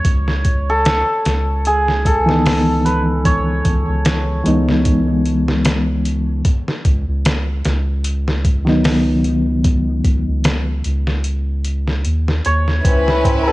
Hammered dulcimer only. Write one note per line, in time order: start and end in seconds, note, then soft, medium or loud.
0.00 2.22 C#5 loud
0.70 1.73 A4 medium
1.67 2.12 G#4 medium
2.06 4.99 A4 medium
2.85 2.96 B4 medium
3.25 6.01 C#5 medium
12.46 13.52 C#5 medium
13.47 13.52 A4 medium